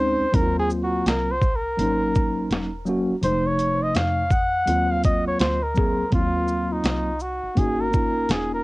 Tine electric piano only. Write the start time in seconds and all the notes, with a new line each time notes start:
Already playing: G#3 C4
0.00 C#4 D#4
0.32 F#3 A#3 C4 D#4
0.42 F4
1.77 F#3 A#3 C#4 D#4
2.85 F#3 A#3 C#4 F#4
3.21 C3 F3 G#3 D#4
3.29 A3
4.66 F#3 A#3 C4 F4
5.74 F#3 A#3 C4 G#4
6.10 F#3 A#3 C4 E4
6.21 F4
7.55 A#3 C#4 D#4 F#4
7.91 A#3 C#4 D#4 F4